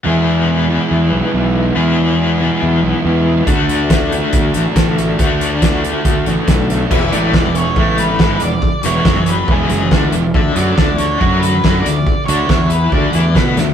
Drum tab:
CC |--------|--------|--------|--------|
HH |--------|--------|xxxxxxxx|xxxxxxxx|
SD |--------|--------|--o---oo|--o---oo|
BD |--------|--------|o-o-o-o-|o-o-o-o-|

CC |x-------|--------|--------|--------|
HH |-x-x-x-x|-x-x-x-x|-x-x-x-x|-x-x-x-x|
SD |--o---o-|--o---o-|--o---o-|--o---oo|
BD |o-o-o-o-|o-o-o-o-|o-o-o-o-|o-o-o-o-|